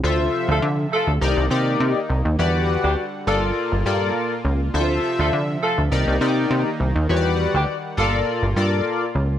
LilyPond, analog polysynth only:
\new Staff \with { instrumentName = "Analog polysynth" } { \time 4/4 \key d \phrygian \tempo 4 = 102 <f' a' c'' e''>4 r4 <ees' g' bes' d''>8 <ees' g' bes' d''>4 r8 | <fis' g' b' d''>4 r8 <f' a' bes' d''>4 <f' a' bes' d''>4 r8 | <e' f' a' c'' e''>4 r4 <ees' g' bes' d''>8 <ees' g' bes' d''>4 r8 | <fis' g' b' cis'' d''>4 r8 <f' a' bes' d''>4 <f' a' bes' d''>4 r8 | }